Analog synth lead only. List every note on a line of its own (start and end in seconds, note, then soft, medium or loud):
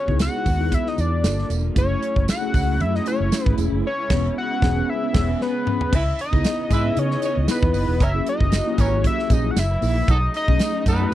0.00 0.18 C#5 loud
0.22 0.76 F#5 loud
0.74 0.90 E5 loud
0.88 1.02 D#5 medium
1.00 1.51 D5 medium
1.78 2.26 C#5 loud
2.30 2.83 F#5 loud
2.81 2.97 E5 medium
2.95 3.07 D#5 medium
3.07 3.55 C#5 medium
3.87 4.34 C#5 loud
4.38 4.91 F#5 loud
4.89 5.41 E5 medium
5.42 5.96 B4 medium
5.95 6.20 E5 loud
6.21 6.74 D#5 medium
6.73 7.00 E5 medium
6.99 7.24 C#5 medium
7.25 7.36 C#5 medium
7.51 8.05 B4 medium
8.03 8.28 E5 loud
8.29 8.82 D#5 medium
8.80 9.05 C#5 medium
9.07 9.34 E5 loud
9.33 9.52 D#5 medium
9.51 9.60 F#5 medium
9.59 10.12 E5 loud
10.11 10.36 D#5 loud
10.37 10.84 D#5 loud
10.88 11.14 B4 loud